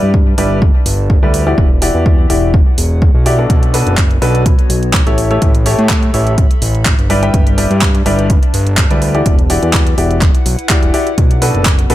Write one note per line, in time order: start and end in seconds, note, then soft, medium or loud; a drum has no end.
0.00 0.35 G2 medium
0.00 2.17 D4 medium
0.00 0.29 A4 medium
0.00 2.21 D5 medium
0.00 0.29 E5 medium
0.00 2.17 A5 medium
0.00 0.29 B5 medium
0.14 kick loud
0.38 0.71 G1 medium
0.38 0.58 G3 medium
0.38 0.58 E4 medium
0.38 0.58 G4 medium
0.38 0.58 B4 medium
0.38 0.58 D5 loud
0.38 open hi-hat medium
0.62 kick loud
0.86 1.19 G1 loud
0.86 open hi-hat loud
1.10 kick loud
1.23 1.55 D2 medium
1.23 1.44 G3 medium
1.23 1.44 E4 medium
1.23 1.44 G4 medium
1.23 1.44 B4 medium
1.23 1.44 D5 medium
1.34 open hi-hat medium
1.47 1.66 E3 medium
1.47 1.66 E4 medium
1.47 1.66 F#4 medium
1.47 1.66 G4 medium
1.47 1.66 D5 medium
1.58 1.91 E1 medium
1.58 4.17 E4 medium
1.58 kick loud
1.81 2.27 E3 medium
1.81 2.27 E4 medium
1.81 2.27 F#4 medium
1.81 2.27 G4 medium
1.81 4.17 B4 medium
1.81 2.27 D5 medium
1.81 open hi-hat loud
1.95 2.27 E2 loud
1.95 4.17 F#5 medium
2.06 kick loud
2.30 2.63 E1 medium
2.30 2.50 E3 medium
2.30 2.50 E4 medium
2.30 2.50 F#4 medium
2.30 2.50 G4 medium
2.30 2.50 D5 medium
2.30 open hi-hat medium
2.54 kick loud
2.78 3.11 E1 loud
2.78 open hi-hat loud
3.02 kick loud
3.15 3.47 B1 medium
3.26 3.36 E4 medium
3.26 3.36 F#4 medium
3.26 3.36 G4 medium
3.26 3.36 D5 loud
3.26 open hi-hat medium
3.39 3.71 B2 medium
3.39 3.71 D4 medium
3.39 3.71 F#4 medium
3.39 3.71 A4 medium
3.39 3.71 D5 medium
3.50 3.83 B1 medium
3.50 5.95 B3 medium
3.50 kick loud
3.50 closed hi-hat medium
3.58 5.95 F#4 medium
3.58 5.89 C#5 medium
3.63 closed hi-hat soft
3.74 3.94 B2 medium
3.74 3.94 D4 medium
3.74 3.94 F#4 medium
3.74 3.94 A4 medium
3.74 3.94 B4 medium
3.74 open hi-hat loud
3.87 4.19 F#1 loud
3.87 closed hi-hat soft
3.97 kick loud
3.97 clap medium
3.97 closed hi-hat medium
4.11 closed hi-hat soft
4.22 4.55 B1 medium
4.22 4.42 B2 medium
4.22 4.42 D4 medium
4.22 4.42 F#4 medium
4.22 4.42 A4 medium
4.22 4.42 B4 loud
4.22 open hi-hat medium
4.35 closed hi-hat soft
4.46 kick loud
4.46 closed hi-hat medium
4.59 closed hi-hat soft
4.70 5.03 B1 loud
4.70 open hi-hat loud
4.83 closed hi-hat soft
4.93 kick loud
4.93 clap loud
4.93 closed hi-hat medium
5.07 5.39 A1 medium
5.07 5.28 A3 medium
5.07 5.28 E4 medium
5.07 5.28 G4 medium
5.07 5.28 A4 medium
5.07 5.28 C#5 medium
5.07 closed hi-hat soft
5.18 7.97 A4 medium
5.18 open hi-hat medium
5.31 5.50 A3 medium
5.31 5.50 E4 medium
5.31 5.50 G4 medium
5.31 5.50 A4 medium
5.31 5.50 C#5 medium
5.31 7.97 E5 medium
5.31 closed hi-hat soft
5.36 7.97 B5 medium
5.42 5.75 A1 loud
5.42 kick loud
5.42 closed hi-hat medium
5.55 closed hi-hat soft
5.66 6.11 A3 medium
5.66 6.11 E4 medium
5.66 6.11 G4 medium
5.66 6.11 A4 medium
5.66 6.11 C#5 medium
5.66 open hi-hat medium
5.79 6.11 A2 medium
5.79 closed hi-hat soft
5.89 kick loud
5.89 clap loud
5.89 closed hi-hat medium
6.03 closed hi-hat soft
6.14 6.47 A1 loud
6.14 6.34 A3 medium
6.14 6.34 E4 medium
6.14 6.33 G4 medium
6.14 6.34 A4 medium
6.14 6.34 C#5 medium
6.14 open hi-hat medium
6.27 closed hi-hat soft
6.38 kick loud
6.38 closed hi-hat medium
6.51 closed hi-hat soft
6.62 6.95 A1 loud
6.62 open hi-hat medium
6.75 closed hi-hat soft
6.85 kick medium
6.85 clap loud
6.85 closed hi-hat medium
6.99 7.31 G1 medium
6.99 closed hi-hat soft
7.10 7.20 G3 medium
7.10 10.03 D4 medium
7.10 7.20 E4 medium
7.10 7.20 G4 medium
7.10 7.20 B4 medium
7.10 7.20 D5 loud
7.10 open hi-hat medium
7.23 7.55 G3 medium
7.23 7.55 E4 medium
7.23 7.55 G4 medium
7.23 7.55 B4 medium
7.23 7.55 G5 medium
7.23 closed hi-hat soft
7.28 10.03 D5 medium
7.34 7.67 G1 medium
7.34 kick loud
7.34 closed hi-hat medium
7.47 closed hi-hat soft
7.58 7.78 G3 medium
7.58 7.78 E4 medium
7.58 7.78 G4 medium
7.58 7.78 B4 medium
7.58 7.78 D5 medium
7.58 open hi-hat loud
7.63 10.03 A5 medium
7.71 8.03 G2 loud
7.71 closed hi-hat soft
7.81 kick loud
7.81 clap loud
7.81 closed hi-hat medium
7.95 closed hi-hat soft
8.06 8.39 G1 loud
8.06 8.26 G3 medium
8.06 8.26 E4 medium
8.06 8.26 G4 medium
8.06 8.26 B4 medium
8.06 8.26 D5 loud
8.06 open hi-hat medium
8.19 closed hi-hat soft
8.30 kick loud
8.30 closed hi-hat medium
8.43 closed hi-hat soft
8.54 8.87 G1 loud
8.54 open hi-hat medium
8.67 closed hi-hat soft
8.77 kick loud
8.77 clap loud
8.77 closed hi-hat medium
8.91 9.23 D2 medium
8.91 9.12 G3 medium
8.91 9.12 E4 medium
8.91 9.12 G4 medium
8.91 9.12 B4 medium
8.91 9.12 D5 medium
8.91 closed hi-hat soft
9.02 open hi-hat medium
9.15 9.34 E3 medium
9.15 9.34 E4 medium
9.15 9.34 F#4 medium
9.15 9.34 G4 medium
9.15 9.34 D5 medium
9.15 closed hi-hat soft
9.26 9.59 E1 loud
9.26 11.85 E4 medium
9.26 kick loud
9.26 closed hi-hat medium
9.39 closed hi-hat soft
9.45 11.85 B4 medium
9.50 9.95 E3 medium
9.50 9.95 E4 medium
9.50 9.95 F#4 medium
9.50 9.95 G4 medium
9.50 9.95 D5 medium
9.50 11.85 F#5 medium
9.50 open hi-hat medium
9.63 9.95 E2 loud
9.63 closed hi-hat soft
9.73 kick loud
9.73 clap loud
9.73 closed hi-hat medium
9.87 closed hi-hat soft
9.98 10.31 E1 medium
9.98 10.18 E3 medium
9.98 10.18 E4 medium
9.98 10.18 F#4 medium
9.98 10.18 G4 medium
9.98 10.18 D5 medium
9.98 open hi-hat medium
10.11 closed hi-hat soft
10.21 kick loud
10.21 clap medium
10.21 closed hi-hat medium
10.35 closed hi-hat soft
10.46 10.56 B1 medium
10.46 open hi-hat loud
10.59 closed hi-hat soft
10.69 10.91 E3 medium
10.69 10.91 E4 medium
10.69 10.91 F#4 medium
10.69 10.91 G4 medium
10.69 10.91 D5 medium
10.69 kick loud
10.69 clap loud
10.69 closed hi-hat medium
10.83 10.92 E1 medium
10.83 closed hi-hat soft
10.94 11.07 E4 medium
10.94 11.07 F#4 medium
10.94 11.07 G4 medium
10.94 11.07 D5 medium
10.94 open hi-hat medium
11.07 closed hi-hat soft
11.18 11.51 B1 loud
11.18 11.95 B3 medium
11.18 kick loud
11.18 closed hi-hat medium
11.31 11.95 F#4 medium
11.31 closed hi-hat soft
11.42 11.62 B2 medium
11.42 11.62 D4 medium
11.42 11.62 F#4 medium
11.42 11.62 A4 medium
11.42 11.62 B4 medium
11.42 open hi-hat loud
11.55 11.87 F#1 loud
11.55 closed hi-hat soft
11.65 kick loud
11.65 clap loud
11.65 closed hi-hat medium
11.79 11.95 C#5 medium
11.79 closed hi-hat soft
11.90 11.95 B1 medium
11.90 11.95 B2 medium
11.90 11.95 D4 medium
11.90 11.95 F#4 medium
11.90 11.95 A4 medium
11.90 11.95 B4 loud
11.90 open hi-hat medium